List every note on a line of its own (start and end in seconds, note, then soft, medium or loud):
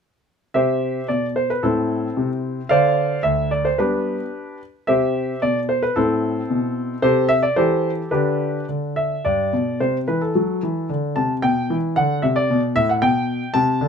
0.54 0.98 C3 soft
0.54 1.06 G4 medium
0.54 1.06 C5 medium
0.54 1.09 E5 medium
1.08 1.53 B2 soft
1.08 1.25 D5 medium
1.36 1.50 C5 medium
1.50 1.64 B4 medium
1.63 2.07 A2 soft
1.63 2.66 C4 medium
1.63 2.66 E4 soft
1.63 2.27 A4 medium
2.17 2.59 C3 soft
2.69 3.13 D3 medium
2.69 3.21 C5 medium
2.69 3.20 D5 medium
2.69 3.24 F5 medium
3.23 3.67 D2 soft
3.23 3.51 E5 medium
3.51 3.65 D5 medium
3.65 3.79 C5 medium
3.78 4.17 G3 soft
3.78 4.22 B3 soft
3.78 4.57 D4 soft
3.78 4.57 G4 soft
3.78 4.60 B4 medium
4.87 5.32 C3 soft
4.87 5.39 G4 medium
4.87 5.39 C5 medium
4.87 5.42 E5 medium
5.42 5.86 B2 soft
5.42 5.58 D5 medium
5.69 5.83 C5 medium
5.83 5.96 B4 medium
5.96 6.39 A2 soft
5.96 6.99 C4 medium
5.96 6.99 E4 soft
5.96 7.02 A4 medium
6.50 6.92 B2 soft
7.02 7.45 C3 medium
7.02 7.28 G4 medium
7.02 7.28 A4 medium
7.02 7.29 C5 medium
7.29 7.42 E5 medium
7.43 7.56 D5 medium
7.56 8.01 E3 soft
7.56 8.08 G4 medium
7.56 8.08 A4 medium
7.56 7.90 C5 medium
8.11 8.57 D3 soft
8.11 8.64 D4 soft
8.11 8.64 G4 soft
8.11 8.64 B4 medium
8.69 9.14 D3 soft
8.96 9.25 E5 medium
9.25 9.51 G2 soft
9.25 9.80 D5 medium
9.53 9.79 B2 soft
9.80 10.06 C3 soft
9.80 9.96 C5 medium
10.08 10.33 E3 soft
10.08 10.21 B4 medium
10.21 10.89 A4 medium
10.35 10.60 F#3 soft
10.63 10.88 E3 soft
10.90 11.15 D3 soft
11.16 11.42 C3 soft
11.16 11.32 A5 medium
11.42 11.68 B2 medium
11.42 11.75 G5 medium
11.70 11.95 E3 medium
11.96 12.22 D3 medium
11.96 12.23 F#5 medium
12.22 12.48 C3 medium
12.22 12.36 E5 medium
12.36 12.60 D5 medium
12.50 12.75 B2 medium
12.76 13.01 A2 medium
12.76 12.89 E5 medium
12.89 13.02 F#5 medium
13.02 13.40 B2 medium
13.02 13.54 G5 medium
13.54 13.80 C3 medium
13.54 13.88 A5 medium
13.81 13.88 D3 medium